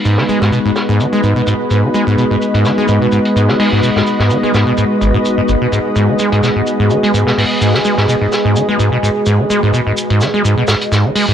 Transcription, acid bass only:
X:1
M:4/4
L:1/16
Q:"Swing 16ths" 1/4=127
K:G#m
V:1 name="Acid bass" clef=bass
G,, D, G, G,, B,, G,, z G,, D, G, G,, B,, G,, z G,, D, | G, G,, B,, G,, z G,, D, G, G,, B,, G,, z G,, D, G, G,, | B,, G,, z G,, D, G, G,, B,, G,, z G,,, G,, z G,, G,,, B,, | G,, z G,, D, G, G,, B,, G,, z G,, D, G, G,, B,, G,, z |
G,, D, G, G,, B,, G,, z G,, D, G, G,, B,, G,, z G,, D, | G, G,, B,, G,, z G,, D, G, G,, B,, G,, z G,, D, G, G,, |]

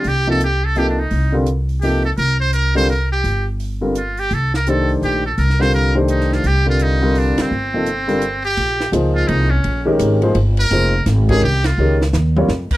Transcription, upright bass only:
X:1
M:3/4
L:1/8
Q:"Swing" 1/4=169
K:Cdor
V:1 name="Upright bass" clef=bass
C,,6 | C,,6 | C,,6 | G,,,6 |
C,,4 B,,,2 | C,,6 | C,,4- C,, z | G,,,6 |
[K:Bbdor] B,,,2 D,,2 C,,2 | B,,,2 A,,,2 G,,,2 | F,,,2 A,,,2 C,,2 | D,,2 E,,2 F,, z |]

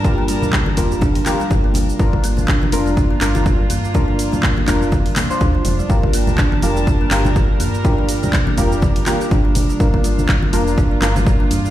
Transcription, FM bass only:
X:1
M:4/4
L:1/8
Q:"Swing 16ths" 1/4=123
K:Gm
V:1 name="FM bass" clef=bass
G,,3 F,,,2 z G,,,2 | G,,,3 F,,,2 G,,,2 G,,- | G,,3 F,,,2 z D,, F,,, | G,,,3 F,,,2 G,,,2 G,,- |
G,,3 F,,,2 z G,,,2 | G,,,3 F,,,2 G,,,2 G,, |]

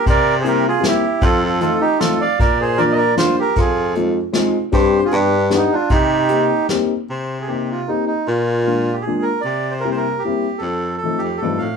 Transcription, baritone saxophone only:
X:1
M:3/4
L:1/8
Q:1/4=153
K:Cm
V:1 name="Baritone saxophone" clef=bass
C,6 | F,,4- F,, z | B,,6 | F,,6 |
G,,2 G,,4 | C,4- C, z | C,6 | B,,6 |
C,6 | F,,3 F,, G,, =A,, |]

